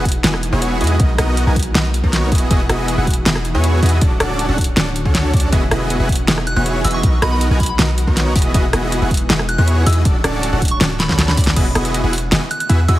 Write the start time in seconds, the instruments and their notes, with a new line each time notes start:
Already playing: 808-style bass E1, ambient pad E3 G#3 D#4 F#4
0.05 kick, closed hi-hat
0.09 closed hi-hat
0.12 closed hi-hat
0.24 808-style bass E1, supersaw synth B3 E4 F#4 G#4 D#5, snare, closed hi-hat
0.34 cross-stick
0.43 closed hi-hat
0.53 808-style bass E1, supersaw synth B3 E4 F#4 G#4 C#5
0.62 closed hi-hat
0.81 808-style bass E2, supersaw synth B3 E4 F#4 G#4 D#5, closed hi-hat
0.84 closed hi-hat
0.87 closed hi-hat
0.99 808-style bass B1, ambient pad D#3 A#3 B3, supersaw synth B3 D#4 F#4 A#4 D#5, kick, closed hi-hat
1.18 808-style bass B1, supersaw synth B3 D#4 F#4 A#4 D#5, cross-stick, closed hi-hat
1.37 closed hi-hat
1.47 808-style bass B1, supersaw synth B3 D#4 F#4 A#4 G#5
1.56 kick, closed hi-hat
1.59 closed hi-hat
1.63 closed hi-hat
1.75 808-style bass B1, supersaw synth B3 D#4 F#4 A#4 D#5, snare, closed hi-hat
1.94 closed hi-hat
2.04 808-style bass B1, supersaw synth B3 D#4 F#4 A#4 C#5, kick
2.13 snare, closed hi-hat
2.32 808-style bass E1, ambient pad E3 G#3 D#4, supersaw synth B3 E4 F#4 G#4 D#5, kick, closed hi-hat
2.35 closed hi-hat
2.38 closed hi-hat
2.51 808-style bass E1, supersaw synth B3 E4 F#4 G#4 D#5, kick, closed hi-hat
2.69 808-style bass E1, supersaw synth B3 E4 F#4 G#4 D#5, cross-stick, closed hi-hat
2.88 closed hi-hat
2.98 808-style bass E1, supersaw synth B3 E4 F#4 G#4 F#5
3.07 kick, closed hi-hat
3.10 closed hi-hat
3.14 closed hi-hat
3.26 808-style bass E1, supersaw synth B3 E4 F#4 G#4 D#5, snare, closed hi-hat
3.36 cross-stick
3.45 closed hi-hat
3.54 808-style bass E2, supersaw synth B3 E4 F#4 G#4 C#5
3.64 closed hi-hat
3.83 808-style bass E2, supersaw synth B3 E4 F#4 G#4 D#5, closed hi-hat
3.86 closed hi-hat
3.89 closed hi-hat
4.01 808-style bass D1, ambient pad D3 A3 C#4 F#4, supersaw synth C#4 D4 F#4 A4 D5, kick, closed hi-hat
4.20 808-style bass D1, supersaw synth C#4 D4 F#4 A4 D5, cross-stick, closed hi-hat
4.39 closed hi-hat
4.49 808-style bass D1, supersaw synth C#4 D4 F#4 A4 F#5
4.58 kick, closed hi-hat
4.61 closed hi-hat
4.64 closed hi-hat
4.77 808-style bass D1, supersaw synth C#4 D4 F#4 A4 D5, snare, closed hi-hat
4.96 closed hi-hat
5.05 808-style bass D2, supersaw synth C#4 D4 F#4 A4 C#5, kick
5.15 snare, closed hi-hat
5.34 808-style bass D2, supersaw synth C#4 D4 F#4 D5, kick, closed hi-hat
5.37 closed hi-hat
5.40 closed hi-hat
5.52 808-style bass E1, ambient pad E3 G#3 D#4 F#4, supersaw synth B3 E4 F#4 G#4 D#5, kick, closed hi-hat
5.71 808-style bass E1, supersaw synth B3 E4 F#4 G#4 D#5, cross-stick, closed hi-hat
5.90 closed hi-hat
6.00 808-style bass E1, supersaw synth B3 E4 F#4 G#4 F#5
6.09 kick, closed hi-hat
6.12 closed hi-hat
6.15 closed hi-hat
6.28 808-style bass E1, supersaw synth B3 E4 F#4 G#4 D#5, snare, closed hi-hat
6.38 cross-stick
6.47 synth bell F#6, closed hi-hat
6.56 808-style bass E1, supersaw synth B3 E4 F#4 G#4 C#5, synth bell F#6
6.66 closed hi-hat
6.84 808-style bass E1, supersaw synth B3 E4 F#4 G#4 D#5, synth bell E6, closed hi-hat, open hi-hat
6.91 synth bell C#6, closed hi-hat
7.03 808-style bass B1, ambient pad D#3 A#3 B3, supersaw synth B3 D#4 F#4 A#4 D#5, kick, closed hi-hat
7.22 808-style bass B1, supersaw synth B3 D#4 F#4 A#4 D#5, synth bell B5, cross-stick, closed hi-hat
7.32 synth bell B5
7.41 closed hi-hat
7.51 808-style bass B1, supersaw synth B3 D#4 F#4 A#4 G#5
7.60 synth bell B5, kick, closed hi-hat
7.63 closed hi-hat
7.66 synth bell B5, closed hi-hat
7.79 808-style bass B1, supersaw synth B3 D#4 F#4 A#4 D#5, snare, closed hi-hat
7.98 closed hi-hat
8.07 808-style bass B1, supersaw synth B3 D#4 F#4 A#4 C#5, kick
8.17 snare, closed hi-hat
8.35 808-style bass E1, ambient pad E3 G#3 D#4 F#4, supersaw synth B3 E4 F#4 G#4 D#5, kick, closed hi-hat, open hi-hat
8.42 closed hi-hat
8.54 808-style bass E1, supersaw synth B3 E4 F#4 G#4 D#5, kick, closed hi-hat
8.73 808-style bass E1, supersaw synth B3 E4 F#4 G#4 D#5, cross-stick, closed hi-hat
8.92 closed hi-hat
9.02 808-style bass E1, supersaw synth B3 E4 F#4 G#4 F#5
9.11 kick, closed hi-hat
9.14 closed hi-hat
9.17 closed hi-hat
9.30 808-style bass E1, supersaw synth B3 E4 F#4 G#4 D#5, snare, closed hi-hat
9.39 cross-stick
9.49 synth bell F#6, closed hi-hat
9.58 808-style bass E2, supersaw synth B3 E4 F#4 G#4 C#5, synth bell F#6
9.68 closed hi-hat
9.86 808-style bass E2, supersaw synth B3 E4 F#4 G#4 D#5, synth bell E6, closed hi-hat, open hi-hat
9.93 closed hi-hat
10.05 808-style bass D1, ambient pad D3 A3 C#4, supersaw synth C#4 D4 F#4 A4 D5, kick, closed hi-hat
10.24 808-style bass D1, supersaw synth C#4 D4 F#4 A4 D5, cross-stick, closed hi-hat
10.43 closed hi-hat
10.53 808-style bass D1, supersaw synth C#4 D4 F#4 A4 F#5
10.62 kick, closed hi-hat
10.65 closed hi-hat
10.68 synth bell C#6, closed hi-hat
10.81 808-style bass D1, supersaw synth C#4 D4 F#4 A4 D5, snare, closed hi-hat
11.00 synth bell B5, snare, closed hi-hat
11.09 808-style bass D2, supersaw synth C#4 D4 F#4 A4 C#5, synth bell B5, kick, snare
11.19 snare, closed hi-hat
11.28 synth bell B5, snare
11.37 808-style bass D2, supersaw synth C#4 D4 F#4 A4 D5, synth bell B5, kick, closed hi-hat, open hi-hat
11.44 snare, closed hi-hat
11.56 808-style bass E1, supersaw synth B3 E4 F#4 G#4 D#5, kick, closed hi-hat, crash, ride
11.75 808-style bass E1, supersaw synth B3 E4 F#4 G#4 D#5, cross-stick, closed hi-hat
11.85 closed hi-hat
11.94 closed hi-hat
12.04 808-style bass E1, supersaw synth B3 E4 F#4 G#4 F#5
12.13 open hi-hat
12.18 closed hi-hat
12.32 808-style bass E1, supersaw synth B3 E4 F#4 G#4 D#5, snare, closed hi-hat
12.51 synth bell F#6, closed hi-hat
12.60 synth bell F#6, closed hi-hat
12.69 808-style bass E2, supersaw synth B3 E4 F#4 G#4 E5, closed hi-hat
12.88 808-style bass E2, supersaw synth B3 E4 F#4 G#4 D#5, synth bell E6, closed hi-hat